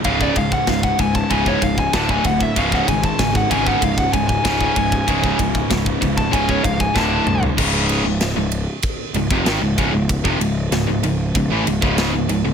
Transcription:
<<
  \new Staff \with { instrumentName = "Lead electric guitar" } { \time 4/4 \tempo 4 = 96 eis''16 d''16 eis''16 fis''16 eis''16 fis''16 gis''16 a''16 gis''16 cis''16 eis''16 gis''16 a''16 gis''16 fis''16 e''16 | eis''16 fis''16 gis''16 a''16 gis''16 fis''16 gis''16 fis''16 eis''16 fis''16 gis''16 gis''4~ gis''16~ | gis''4~ gis''16 r8 a''16 gis''16 cis''16 eis''16 gis''16 a''8. r16 | r1 |
r1 | }
  \new Staff \with { instrumentName = "Distorted electric guitar" } { \clef bass \time 4/4 <cis, gis, cis>8 <cis, gis,>8 <cis, gis,>8 <cis, gis,>8 <cis, gis, cis>8 <cis, gis,>8 <d, a, d>8 <d, a,>8 | <cis, gis, cis>8 <cis, gis,>8 <cis, gis,>8 <cis, gis, cis>8 <cis, gis,>8 <cis, gis,>8 <cis, gis, cis>8 <cis, gis,>8 | <cis, gis, cis>8 <cis, gis,>8 <cis, gis,>8 <cis, gis,>8 <cis, gis, cis>8 <cis, gis,>8 <d, a, d>8 <d, a,>8 | <cis, gis, cis>8. <cis, gis,>8 <cis, gis,>8 r8. <cis, gis,>16 <eis, bis,>16 <gis, dis>16 <cis, gis,>16 <cis, gis,>16 <cis, gis,>16~ |
<cis, gis,>16 <eis, bis,>16 <cis, gis,>8 <cis, gis,>16 <cis, gis,>16 <cis, gis,>8 <cis, gis,>16 <a, e>16 <cis, gis,>16 <cis, gis, cis>8 <cis, gis,>16 <cis, gis,>16 <cis, gis,>16 | }
  \new Staff \with { instrumentName = "Distorted electric guitar" } { \clef bass \time 4/4 <cis, gis, cis>8 <cis, gis,>8 <cis, gis,>8 <cis, gis,>8 <cis, gis, cis>8 <cis, gis,>8 <d, a, d>8 <d, a,>8 | <cis, gis, cis>8 <cis, gis,>8 <cis, gis,>8 <cis, gis, cis>8 <cis, gis,>8 <cis, gis,>8 <cis, gis, cis>8 <cis, gis,>8 | <cis, gis, cis>8 <cis, gis,>8 <cis, gis,>8 <cis, gis,>8 <cis, gis, cis>8 <cis, gis,>8 <d, a, d>8 <d, a,>8 | <cis, gis, cis>8. <cis, gis,>8 <cis, gis,>8 r8. <cis, gis,>16 <eis, bis,>16 <gis, dis>16 <cis, gis,>16 <cis, gis,>16 <cis, gis,>16~ |
<cis, gis,>16 <eis, bis,>16 <cis, gis,>8 <cis, gis,>16 <cis, gis,>16 <cis, gis,>8 <cis, gis,>16 <a, e>16 <cis, gis,>16 <cis, gis, cis>8 <cis, gis,>16 <cis, gis,>16 <cis, gis,>16 | }
  \new Staff \with { instrumentName = "Distorted electric guitar" } { \clef bass \time 4/4 <cis, gis, cis>2. <d, a, d>4 | <cis, gis, cis>2.~ <cis, gis, cis>8 <cis, gis, cis>8 | <cis, gis, cis>2. <d, a, d>4 | r1 |
r1 | }
  \new Staff \with { instrumentName = "Picked electric bass" } { \clef bass \time 4/4 cis,,8 cis,,8 cis,,8 cis,,8 cis,,8 cis,,8 d,,8 d,,8 | cis,,8 gis,,8 gis,,8 gis,,8 cis,,8 cis,,8 cis,,8 cis,,8 | cis,,8 cis,,8 cis,,8 cis,,8 cis,,8 cis,,8 d,,8 bis,,8 | cis,,8. cis,,8 cis,,8 r8. cis,,16 eis,,16 gis,,16 cis,,16 cis,,16 cis,,16~ |
cis,,16 eis,,16 cis,,8 cis,,16 cis,,16 cis,,8 cis,,16 a,,16 cis,,16 cis,,8 cis,,16 cis,,16 cis,,16 | }
  \new DrumStaff \with { instrumentName = "Drums" } \drummode { \time 4/4 <bd cymr>16 bd16 <bd cymr>16 bd16 <bd cymr sn>16 bd16 <bd cymr>16 bd16 <bd cymr>16 bd16 <bd cymr>16 bd16 <bd cymr sn>16 bd16 <bd cymr>16 bd16 | <bd cymr>16 bd16 <bd cymr>16 bd16 <bd cymr sn>16 bd16 <bd cymr>16 bd16 <bd cymr>16 bd16 <bd cymr>16 bd16 <bd cymr sn>16 bd16 <bd cymr>16 bd16 | <bd cymr>16 bd16 <bd cymr>16 bd16 <bd cymr sn>16 bd16 <bd cymr>16 bd16 <bd cymr>16 bd16 <bd cymr>16 bd16 <bd sn>8 toml16 tomfh16 | <cymc bd>8 cymr8 <cymr sn>8 cymr8 <bd cymr>8 cymr16 bd16 <cymr sn>8 <bd cymr>8 |
<bd cymr>16 bd16 cymr8 <cymr sn>8 cymr8 <bd cymr>8 cymr16 bd16 <cymr sn>8 cymr8 | }
>>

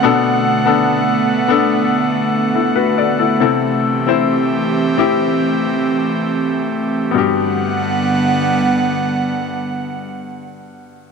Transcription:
<<
  \new Staff \with { instrumentName = "Grand piano" } { \time 4/4 \key g \major \tempo 4 = 65 << { r2. <e' a'>16 <fis' b'>16 <a' d''>16 <e' a'>16~ | <e' a'>16 r2. r8. | r1 | } \\ { <b d' a'>8. <b d' a'>4 <b d' a'>2 r16 | <c' e' a'>8. <c' e' c''>4 <c' e' g'>2 r16 | <b fis' g'>1 | } >> }
  \new Staff \with { instrumentName = "Grand piano" } { \clef bass \time 4/4 \key g \major b,4. r2 r8 | c4. r2 r8 | g,1 | }
  \new Staff \with { instrumentName = "Analog synth pad" } { \time 4/4 \key g \major << { <d b fis''>1 | <e c' g'>1 | <d g b fis''>1 | } \\ { a1~ | a1 | r1 | } >> }
>>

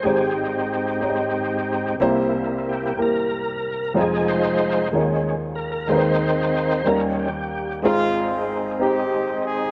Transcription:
<<
  \new Staff \with { instrumentName = "Horn section" } { \time 6/8 \key aes \major \tempo 4. = 62 << { r2. | r2. | r2. | r2. |
f'4 r8 g'4 aes'8 | } \\ { r2. | r2. | r2. | r2. |
<aes c'>4. <c' ees'>4. | } >> }
  \new Staff \with { instrumentName = "Tonewheel organ" } { \time 6/8 \key aes \major aes'8 ees'2~ ees'8 | r4 g'16 g'16 bes'4. | aes'8 c''4 r4 bes'16 bes'16 | c''4. bes'8 g'4 |
<aes c' ees'>2. | }
  \new Staff \with { instrumentName = "Tonewheel organ" } { \time 6/8 \key aes \major <aes, c' g'>2. | <c bes e'>4. r4. | <f aes ees'>4. <ees aes des'>8 r4 | <ees c' ees'>4. <ees g des'>8 r4 |
r2. | }
  \new Staff \with { instrumentName = "Upright piano" } { \time 6/8 \key aes \major <aes ees' g' c''>4~ <aes ees' g' c''>16 r16 <aes ees' g' des'' ees''>4~ <aes ees' g' des'' ees''>16 r16 | <bes e' g' c''>4~ <bes e' g' c''>16 r16 <bes e' g' bes'>4~ <bes e' g' bes'>16 r16 | <g aes ees' f' c''>4~ <g aes ees' f' c''>16 r16 <aes ees' f' des''>4~ <aes ees' f' des''>16 r16 | <aes c' ees' ces'' c''>4~ <aes c' ees' ces'' c''>16 r16 <g des' ees' bes'>4~ <g des' ees' bes'>16 r16 |
<c' ees' aes'>4~ <c' ees' aes'>16 r16 <c' ees' g'>4~ <c' ees' g'>16 r16 | }
  \new Staff \with { instrumentName = "Upright piano" } { \clef bass \time 6/8 \key aes \major <aes,, aes,>2. | <c, c>2. | <f,, f,>4. <ees, ees>4. | <ees, ees>4. <ees, ees>4. |
<aes,, aes,>2. | }
>>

